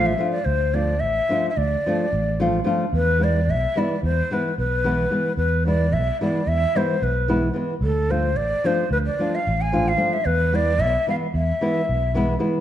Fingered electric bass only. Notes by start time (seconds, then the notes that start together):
Already playing: A1
0.46 D2
1.02 A1
1.57 D2
2.13 A1
2.93 E2
3.48 B1
4.03 E2
4.58 B1
5.37 E2
5.92 B1
6.47 E2
7.02 B1
7.81 D2
8.35 A1
8.91 D2
9.47 A1
10.26 E2
10.79 B1
11.34 E2
11.89 B1